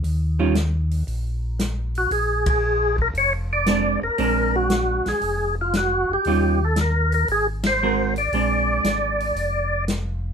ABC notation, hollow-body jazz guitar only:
X:1
M:4/4
L:1/8
Q:"Swing" 1/4=116
K:Bbdor
V:1 name="Hollow-body jazz guitar"
z [E,G,DF] z6 | z6 [A,C=D] z | [A,C=D]4- [A,CD] z3 | [E,G,DF] z4 z [A,C_GB] z |
[A,C=D]4- [A,CD] z3 |]